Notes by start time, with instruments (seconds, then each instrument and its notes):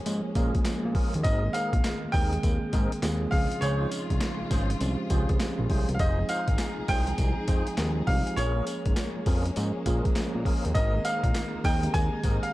Already playing: tine electric piano F3 G#3 A#3 C#4 G4 G#4, string section G#3 A#3 C#4
0.06 analog synth bass G#2, tine electric piano F3 G#3 A#3 C#4 G#4, closed hi-hat, tambourine
0.35 analog synth bass A#2, tine electric piano F3 G#3 A#3 C#4 G#4, tonewheel organ C#4 F4 G#4 A#4, kick, closed hi-hat, tambourine
0.55 kick, closed hi-hat
0.65 snare, clap, closed hi-hat, tambourine
0.85 analog synth bass A#2
0.95 tonewheel organ C#4 F4 G#4 A#4, kick, open hi-hat
1.14 analog synth bass D#2, closed hi-hat
1.23 analog synth bass G#1, tonewheel organ C4 D#4 G#4 A#4, grand piano D#5, kick, closed hi-hat, tambourine
1.43 tine electric piano D#3 G#3 A#3 C4 G#4
1.53 tonewheel organ C4 D#4 G#4 A#4, grand piano F5, closed hi-hat, tambourine
1.73 analog synth bass A#1, kick, closed hi-hat
1.84 snare, clap, closed hi-hat, tambourine
2.04 analog synth bass D#2
2.12 analog synth bass D#2, tonewheel organ C4 D#4 G#4 A#4, grand piano G5, kick, open hi-hat, tambourine
2.32 tine electric piano D#3 G#3 A#3 C4 G#4, closed hi-hat
2.43 analog synth bass D#2, kick, closed hi-hat, tambourine
2.73 analog synth bass G#2, tonewheel organ C4 D#4 G#4 A#4, kick, closed hi-hat, tambourine
2.92 closed hi-hat
3.02 analog synth bass D#2, tine electric piano D#3 G#3 A#3 C4 G#4, snare, clap, closed hi-hat, tambourine
3.31 analog synth bass C#2, string section C#3 F4, tine electric piano F3 G#3 C4 C#4 G#4, grand piano F5, kick, open hi-hat
3.52 closed hi-hat
3.61 analog synth bass C#2, tonewheel organ C#4 F4 G#4 C5, grand piano C#5, closed hi-hat, tambourine
3.81 tine electric piano F3 G#3 C#4 D#4
3.92 closed hi-hat, tambourine
4.10 analog synth bass C2, kick, closed hi-hat
4.21 snare, clap, closed hi-hat, tambourine
4.41 analog synth bass G#1
4.51 analog synth bass G#1, tonewheel organ C#4 F4 G#4 C5, kick, snare, closed hi-hat, tambourine
4.70 closed hi-hat
4.80 analog synth bass C2, tine electric piano F3 G#3 C4 C#4 G4, closed hi-hat, tambourine
5.10 analog synth bass C#2, tine electric piano F3 G#3 C4 C#4 G4, tonewheel organ C#4 F4 G#4 C5, kick, closed hi-hat, tambourine
5.18 tine electric piano G#4
5.29 analog synth bass C#2, kick, closed hi-hat
5.40 snare, clap, closed hi-hat, tambourine
5.59 analog synth bass A#1
5.70 analog synth bass C2, tonewheel organ C#4 F4 G#4 C5, kick, open hi-hat
5.89 analog synth bass C2, closed hi-hat
5.95 grand piano F5
5.99 analog synth bass F1, string section F3 D#4 G#4, tonewheel organ D#4 F4 G#4 C5, grand piano D#5, kick, closed hi-hat, tambourine
6.18 tine electric piano F3 G#3 C4 D#4 G#4
6.29 tonewheel organ D#4 F4 G#4 C5, grand piano F5, closed hi-hat, tambourine
6.48 analog synth bass G#1, kick, closed hi-hat
6.58 snare, clap, closed hi-hat, tambourine
6.79 analog synth bass C2
6.88 analog synth bass C2, tonewheel organ D#4 F4 G#4 C5, grand piano G5, kick, open hi-hat, tambourine
7.07 tine electric piano F3 G#3 C4 D#4 G#4, closed hi-hat
7.18 analog synth bass C2, kick, closed hi-hat, tambourine
7.48 analog synth bass F2, tonewheel organ D#4 F4 G#4 C5, kick, closed hi-hat, tambourine
7.67 closed hi-hat
7.77 analog synth bass D#2, tine electric piano F3 G#3 C4 D#4 G#4, snare, clap, closed hi-hat, tambourine
8.07 analog synth bass C2, tine electric piano F3 G#3 C4 D#4 G4, grand piano F5, kick, open hi-hat
8.27 closed hi-hat
8.36 analog synth bass A#1, string section G#3 A#3 C#4, tonewheel organ C#4 F4 G#4 A#4, grand piano C#5, closed hi-hat, tambourine
8.56 tine electric piano F3 G#3 A#3 C#4 G#4
8.67 closed hi-hat, tambourine
8.86 analog synth bass G#1, kick, closed hi-hat
8.96 snare, clap, closed hi-hat, tambourine
9.16 analog synth bass F2
9.26 analog synth bass F2, tonewheel organ C#4 F4 G#4 A#4, kick, open hi-hat, tambourine
9.45 closed hi-hat
9.56 analog synth bass G#2, tine electric piano F3 G#3 A#3 C#4 G#4, closed hi-hat, tambourine
9.86 analog synth bass A#2, tine electric piano F3 G#3 A#3 C#4 G#4, tonewheel organ C#4 F4 G#4 A#4, kick, closed hi-hat, tambourine
10.05 kick, closed hi-hat
10.16 snare, clap, closed hi-hat, tambourine
10.35 analog synth bass A#2
10.45 tonewheel organ C#4 F4 G#4 A#4, kick, open hi-hat
10.65 analog synth bass D#2, closed hi-hat
10.74 analog synth bass G#1, tonewheel organ C4 D#4 G#4 A#4, string section D#4, grand piano D#5, kick, closed hi-hat, tambourine
10.94 tine electric piano D#3 G#3 A#3 C4 G#4
11.05 tonewheel organ C4 D#4 G#4 A#4, grand piano F5, closed hi-hat, tambourine
11.24 analog synth bass A#1, kick, closed hi-hat
11.34 snare, clap, closed hi-hat, tambourine
11.54 analog synth bass D#2
11.64 analog synth bass D#2, tonewheel organ C4 D#4 G#4 A#4, grand piano G5, kick, open hi-hat, tambourine
11.83 tine electric piano D#3 G#3 A#3 C4 G4, closed hi-hat
11.91 analog synth bass D#2, tine electric piano G#4, grand piano G#5, kick, closed hi-hat, tambourine
12.23 analog synth bass G#2, tonewheel organ C4 D#4 G#4 A#4, kick, closed hi-hat, tambourine
12.43 grand piano F5, closed hi-hat